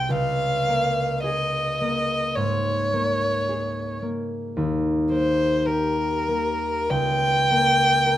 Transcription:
Already playing: C2 C4 G#4 G5
0.09 C#2 F5
0.68 A#3
1.24 G#4 D#5
1.81 A#3
2.35 G#2 C#5
2.93 A#3
3.49 G#4
4.02 A#3
4.57 D#2
5.11 A#3 C5
5.66 G4 A#4
6.28 A#3
6.90 C#2 G5
7.51 A#3
8.06 A#4

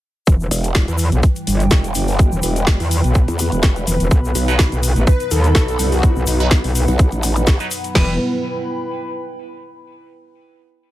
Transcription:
0.27 E1 E3 G3 B3 E4 B4, kick, closed hi-hat, shaker
0.40 shaker
0.51 E1, open hi-hat, shaker
0.64 closed hi-hat, shaker
0.69 B4
0.75 kick, snare, closed hi-hat, shaker
0.88 E2, closed hi-hat, shaker
0.98 open hi-hat, shaker
1.04 G5
1.12 B1, closed hi-hat, shaker
1.23 kick, closed hi-hat, shaker
1.36 closed hi-hat, shaker
1.47 G1, open hi-hat, shaker
1.55 B5
1.60 closed hi-hat, shaker
1.71 E1, kick, snare, closed hi-hat, shaker
1.84 closed hi-hat, shaker
1.95 F#1, open hi-hat, shaker
2.08 open hi-hat, shaker
2.19 D#4, kick, closed hi-hat, shaker
2.32 E1, shaker
2.42 E1, open hi-hat, shaker
2.56 closed hi-hat, shaker
2.67 kick, snare, closed hi-hat, shaker
2.80 E2, open hi-hat, shaker
2.91 open hi-hat, shaker
3.04 B1, closed hi-hat, shaker
3.15 kick, closed hi-hat, shaker
3.28 E2, closed hi-hat, shaker
3.39 open hi-hat, shaker
3.52 E1, closed hi-hat, shaker
3.63 kick, snare, closed hi-hat, shaker
3.76 closed hi-hat, shaker
3.87 E1, open hi-hat, shaker
4.00 E1, closed hi-hat, shaker
4.11 B1 F#3 D#4, kick, closed hi-hat, shaker
4.25 shaker
4.35 B1, open hi-hat, shaker
4.48 F#3 D#4 B4, closed hi-hat, shaker
4.59 kick, snare, closed hi-hat, shaker
4.72 B1, closed hi-hat, shaker
4.82 F#5, open hi-hat, shaker
4.96 A1, closed hi-hat, shaker
5.07 B4, kick, closed hi-hat, shaker
5.20 B4, closed hi-hat, shaker
5.31 D#2 A4, open hi-hat, shaker
5.44 closed hi-hat, shaker
5.55 B1, kick, snare, closed hi-hat, shaker
5.68 closed hi-hat, shaker
5.79 C2, open hi-hat, shaker
5.92 F#4, open hi-hat, shaker
6.03 kick, closed hi-hat, shaker
6.16 B1, shaker
6.27 B1 D#4, open hi-hat, shaker
6.40 F#3 D#4 B4, closed hi-hat, shaker
6.51 kick, snare, closed hi-hat, shaker
6.64 B1, open hi-hat, shaker
6.75 open hi-hat, shaker
6.88 B1, closed hi-hat, shaker
6.99 kick, closed hi-hat, shaker
7.11 A1, closed hi-hat, shaker
7.23 open hi-hat, shaker
7.36 closed hi-hat, shaker
7.47 kick, snare, closed hi-hat, shaker
7.60 F#3 D#4 B4, closed hi-hat, shaker
7.71 open hi-hat, shaker
7.84 closed hi-hat, shaker
7.95 E1 G3 B3 E4 B4, kick, snare, crash
8.03 B4
8.10 G5
8.17 B5

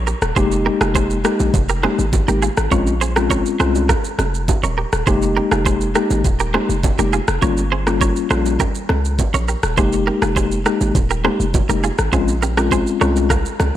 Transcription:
Already playing: A#1
0.07 G4 A#4, shaker
0.22 D#1, cross-stick, shaker
0.36 F1 G#3 A#3 D#4 G4 G#4 C5, kick, low conga, shaker
0.51 shaker
0.66 G4 A#4, low bongo
0.81 F1 F4 G#4, cross-stick, shaker
0.95 G#4 C5, kick, high bongo, shaker
1.10 shaker
1.24 G#3 A#3 D#4 G4 A#4, cross-stick, shaker
1.40 A#1, high bongo, shaker
1.54 F1, kick, low conga, shaker
1.69 G4 A#4, shaker
1.83 G#3 A#3 D#4 G4 G#4 C5, cross-stick, high bongo, low bongo
1.99 G#1, shaker
2.13 kick, high bongo, low conga, shaker
2.28 G#1 G#3 A#3 D#4 G4 A#4, low bongo, shaker
2.42 F4 G#4, shaker
2.57 G#1, cross-stick, shaker
2.71 A#1 G#3 C4 C#4 F4 A#4 C#5, kick, low conga, shaker
2.87 shaker
3.01 G#4 C5, low bongo, shaker
3.16 G#3 C4 C#4 F4 G4 A#4, cross-stick, low bongo, shaker
3.30 A#4 C#5, kick, high bongo, shaker
3.46 shaker
3.60 C2 G#3 C4 C#4 F4 G#4 C5, cross-stick, shaker
3.75 high bongo, shaker
3.89 F4 A#4, kick, cross-stick, low conga, shaker
4.04 shaker
4.19 F1, cross-stick, high bongo, low bongo, shaker
4.34 shaker
4.48 kick, high bongo, low conga, shaker
4.63 D#1 A#4 C#5, low bongo, shaker
4.78 G4 A#4
4.93 D#1, cross-stick, shaker
5.07 F1 G#3 A#3 D#4 G4 G#4 C5, kick, low conga, shaker
5.22 shaker
5.37 G4 A#4, low bongo
5.51 F1 F4 G#4, cross-stick, shaker
5.66 G#4 C5, kick, high bongo, shaker
5.81 shaker
5.95 G#3 A#3 D#4 G4 A#4, cross-stick, shaker
6.10 G#1, high bongo, shaker
6.24 D#1, kick, low conga, shaker
6.40 G4 A#4, shaker
6.54 G#3 A#3 D#4 G4 G#4 C5, cross-stick, high bongo, low bongo
6.69 F1, shaker
6.83 kick, high bongo, low conga, shaker
6.98 F1 G#3 A#3 D#4 G4 A#4, low bongo, shaker
7.13 F4 G#4, shaker
7.28 F1, cross-stick, shaker
7.42 G1 G3 A#3 C#4 F4 A#4 C#5, kick, low conga, shaker
7.57 shaker
7.72 G#4 C5, low bongo
7.87 G3 A#3 C#4 F4 G4 A#4, cross-stick, shaker
8.01 A#4 C#5, kick, high bongo, shaker
8.16 shaker
8.30 A#1 G3 A#3 C#4 F4 G#4 C5, cross-stick, shaker
8.45 high bongo, shaker
8.60 G4 A#4, kick, low conga, shaker
8.75 shaker
8.89 C#2, cross-stick, high bongo, low bongo
9.05 shaker
9.19 kick, high bongo, low conga, shaker
9.34 A#1 A#4 C#5, low bongo, shaker
9.48 G4 A#4, shaker
9.63 D#1, cross-stick, shaker
9.77 F1 G#3 A#3 D#4 G4 G#4 C5, kick, low conga, shaker
9.93 shaker
10.07 G4 A#4, low bongo
10.22 F1 F4 G#4, cross-stick, shaker
10.36 G#4 C5, kick, high bongo, shaker
10.52 shaker
10.65 G#3 A#3 D#4 G4 A#4, cross-stick, shaker
10.81 G#1, high bongo, shaker
10.95 D#1, kick, low conga, shaker
11.10 G4 A#4, shaker
11.24 G#3 A#3 D#4 G4 G#4 C5, cross-stick, high bongo, low bongo
11.40 F1, shaker
11.54 kick, high bongo, low conga, shaker
11.69 F1 G#3 A#3 D#4 G4 A#4, low bongo, shaker
11.84 F4 G#4, shaker
11.98 G#1, cross-stick, shaker
12.13 A#1 G#3 C4 C#4 F4 G#4 C5, kick, low conga, shaker
12.28 shaker
12.42 G4 A#4, low bongo, shaker
12.57 G#3 C4 C#4 F4 G4 A#4, cross-stick, shaker
12.71 G#4 C5, kick, high bongo, shaker
12.87 shaker
13.01 C2 G#3 C4 C#4 F4 A#4 C#5, cross-stick, shaker
13.16 high bongo, shaker
13.30 F4 A#4, kick, cross-stick, low conga, shaker
13.45 shaker
13.60 C#2, cross-stick, high bongo, low bongo, shaker

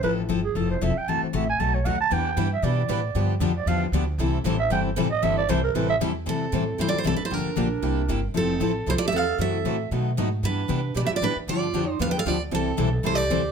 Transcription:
0.03 A1 F3 C4 E4 A4 B4
0.29 G1 F3 C4 E4 A4
0.44 G#4
0.55 F1 F3 C4 E4 A4
0.70 C5
0.81 E1 F3 C4 E4 A4 E5
0.96 G5, muted upright bass stroke
1.07 F#1 C3 E3 A3 E4 F#4 A5
1.22 C5, muted upright bass stroke
1.33 A1 C3 E3 A3 E4 F#4 E5
1.49 G#5
1.60 B1 B2 F#3 A3 D#4 F#4 A5
1.75 C#5
1.85 D#2 B2 F#3 A3 D#4 F#4 F#5
2.01 A5
2.10 E2 E3 G3 B3 D4 E4 G4 B4 G5
2.37 G2 E3 G3 B3 D4 E4 G4 B4
2.53 E5
2.62 B2 E3 G3 B3 D4 E4 G4 B4 D5
2.89 A2 E3 G3 B3 D4 E4 G4 B4
3.15 G2 D3 F3 B3 D4 G4
3.40 F2 D3 F3 B3 D4 G4
3.57 D5
3.66 E2 D3 F3 B3 D4 G4 F5
3.92 D2 D3 F3 B3 D4 G4
4.18 C2 C3 E3 G3 C4 E4 A4
4.44 A1 C3 E3 G3 C4 E4 A4
4.59 E5
4.71 G1 C3 E3 G3 C4 E4 A4 G5
4.97 A1 C3 E3 G3 C4 E4 A4
5.11 D#5
5.22 G1 C3 E3 G3 C4 E4 A4 E5
5.38 D5
5.49 C2 C3 E3 G3 C4 E4 A4 C5
5.64 A#4
5.74 A1 C3 E3 G3 C4 E4 A4 B4
5.90 E5
6.00 E2 C3 E3 G3 C4 E4 A4
6.26 C3 E3 G3 C4 E4 A4
6.52 A2 C3 E3 G3 C4 E4 A4
6.79 G2 C3 E3 G3 C4 E4 A4 C5
6.89 F4 D5
6.93 E4, muted upright bass stroke
6.98 C5
7.04 C2 C3 E3 G3 C4 E4 A4
7.15 D4 B4
7.19 muted upright bass stroke
7.24 E4 C5
7.31 G1 D3 F3 A#3 D4 G4 A#4
7.45 muted upright bass stroke
7.56 A#1 D3 F3 A#3 D4 G4
7.82 C2 C3 G3 A#3 E4 G4
8.08 G1 C3 G3 A#3 E4 G4
8.34 F1 F3 C4 E4 A4
8.60 A1 F3 C4 E4 A4
8.86 C2 F3 C4 E4 A4 C5
8.96 F4 D5
9.01 muted upright bass stroke
9.05 G4 E5
9.12 E2 F3 C4 E4 A4
9.16 F5
9.38 F#2 C3 E3 F#3 A3 C4 E4 F#4 A4 E5
9.65 A2 C3 E3 F#3 A3 C4 E4 F#4 A4
9.91 B2 D#3 F#3 A3 B3 D#4 F#4 A4
10.17 G#2 B2 D#3 F#3 A3 B3 D#4 F#4 A4
10.43 G2 E3 G3 B3 D4 E4 G4 B4
10.68 C3 E3 G3 B3 D4 E4 G4 B4
10.95 B2 E3 G3 B3 D4 E4 G4 B4 D5
11.05 G4 E5
11.10 F4, muted upright bass stroke
11.16 D5
11.21 A2 E3 G3 B3 D4 E4 G4 B4
11.36 muted upright bass stroke
11.47 G2 D3 F3 B3 D4 F4 G4 D5
11.73 F2 D3 F3 B3 D4 G4
11.91 C5
11.99 E2 D3 F3 B3 D4 G4 B4 F5
12.09 B4 G5
12.18 A4 F5
12.25 D2 D3 F3 B3 D4 F4 G4 D5
12.51 C2 C3 E3 G3 C4 E4 A4
12.77 B1 C3 E3 G3 C4 E4 A4
13.03 C2 C3 E3 G3 C4 E4 A4 C5
13.14 G4 D5
13.30 D2 C3 E3 G3 C4 E4 A4

